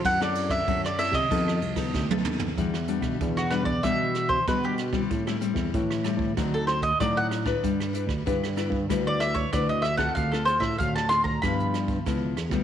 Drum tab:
RD |x-xxx-xxx-xx----|----------------|----------------|----------------|
HH |----------------|xxxxxxx-x-xxx-x-|xxx-x-x-xxxxx-xx|xxxxxxx-x-xxx-x-|
SD |-r-r-r-r-r-ro---|-r-r-rr-r-r-r-rr|-r-r-rr-r-r-r-rr|-r-r-rr-r-r-r-rr|
T1 |-------------o--|----------------|----------------|----------------|
T2 |--------------o-|----------------|----------------|----------------|
FT |---------------o|----------------|----------------|----------------|
BD |o--oo--oo--oo---|o--oo--oo--oo--o|o--oo--oo--oo--o|o--oo--oo--oo--o|

RD |----------------|
HH |xxx-x-x-xxxxx-xx|
SD |-r-r-rr-r-r-r-rr|
T1 |----------------|
T2 |----------------|
FT |----------------|
BD |o--oo--oo--oo--o|